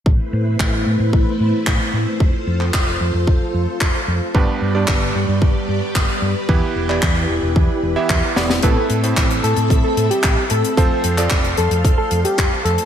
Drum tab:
HH |----------------|----------------|----------------|----------------|
CP |----x-------x---|---xx-------x---|----x-------x---|---xx-------x---|
SD |----------------|----------------|----------------|--------------oo|
BD |o---o---o---o---|o---o---o---o---|o---o---o---o---|o---o---o---o---|

HH |x-xxxxxxx-xxx-xx|x-xxxxxxx-xxx-xx|
CP |----x-------x---|---xx-------x---|
SD |----------------|----------------|
BD |o---o---o---o---|o---o---o---o---|